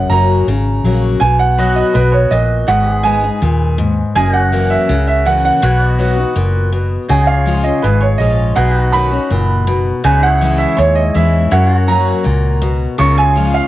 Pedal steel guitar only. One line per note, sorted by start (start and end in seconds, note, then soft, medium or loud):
1.59 2.68 F#4 medium
1.59 2.68 B4 medium
1.59 2.68 D#5 medium
2.68 2.93 F#4 medium
2.68 4.15 B4 medium
2.68 4.16 D#5 medium
2.93 4.14 G#4 medium
4.16 4.41 G#4 medium
4.16 5.62 A#4 medium
4.16 4.43 D#5 medium
4.41 5.61 F#4 medium
4.41 5.62 C#5 medium
5.63 7.09 F#4 medium
5.63 7.09 B4 medium
5.63 5.90 C#5 medium
5.90 7.10 D#5 medium
7.10 7.30 F#4 medium
7.10 8.56 G#4 medium
7.10 7.37 D#5 medium
7.30 8.56 F4 medium
7.37 8.57 C#5 medium
8.57 10.03 D#4 medium
8.57 8.82 G#4 medium
8.57 10.04 B4 medium
8.82 10.03 F#4 medium
10.05 10.25 D#4 medium
10.05 10.30 F#4 medium
10.05 10.31 B4 medium
10.25 11.50 E4 medium
10.30 11.50 G#4 medium
10.30 11.51 C#5 medium
11.52 11.77 E4 medium
11.52 12.98 A#4 medium
11.52 12.99 C#5 medium
11.77 12.98 F#4 medium
13.00 13.68 F4 medium
13.00 13.26 A#4 medium
13.00 13.68 C#5 medium
13.26 13.68 G#4 medium